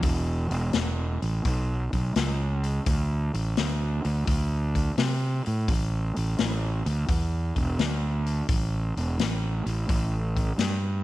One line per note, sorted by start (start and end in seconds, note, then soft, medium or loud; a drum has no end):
0.03 0.46 E1 medium
0.03 kick loud
0.03 open hi-hat medium
0.51 0.71 E1 medium
0.51 open hi-hat soft
0.73 1.17 E1 medium
0.73 snare loud
0.73 open hi-hat medium
1.22 1.42 A1 medium
1.22 open hi-hat soft
1.45 1.88 B1 medium
1.45 kick loud
1.45 open hi-hat medium
1.93 2.13 B1 medium
1.93 kick medium
1.93 open hi-hat soft
2.16 2.79 C#2 medium
2.16 snare loud
2.16 open hi-hat medium
2.64 open hi-hat soft
2.86 3.29 D2 medium
2.86 kick loud
2.86 open hi-hat medium
3.34 3.54 A1 medium
3.34 open hi-hat medium
3.57 4.00 D2 medium
3.57 snare loud
3.57 open hi-hat medium
4.05 4.25 D2 medium
4.05 open hi-hat soft
4.27 4.90 D2 medium
4.27 kick loud
4.27 open hi-hat medium
4.75 kick medium
4.75 open hi-hat soft
4.98 5.40 C3 medium
4.98 snare loud
4.98 open hi-hat medium
5.46 5.66 A2 medium
5.46 open hi-hat soft
5.68 6.10 A1 medium
5.68 kick loud
5.68 open hi-hat medium
6.16 6.36 A1 medium
6.16 open hi-hat soft
6.38 6.81 A1 medium
6.38 snare loud
6.38 open hi-hat medium
6.86 7.06 D2 medium
6.86 open hi-hat soft
7.09 7.51 E2 medium
7.09 kick loud
7.09 open hi-hat medium
7.56 7.76 E1 medium
7.56 kick medium
7.56 open hi-hat soft
7.79 8.41 D2 loud
7.79 snare loud
7.79 open hi-hat medium
8.26 open hi-hat soft
8.49 8.91 A1 loud
8.49 kick loud
8.49 open hi-hat medium
8.97 9.16 E1 medium
8.97 open hi-hat soft
9.19 9.61 A1 medium
9.19 snare loud
9.19 open hi-hat medium
9.66 9.86 A1 medium
9.66 open hi-hat soft
9.89 10.52 A1 medium
9.89 kick loud
9.89 open hi-hat medium
10.37 kick medium
10.37 open hi-hat soft
10.58 11.01 G2 medium
10.58 snare loud
10.58 open hi-hat medium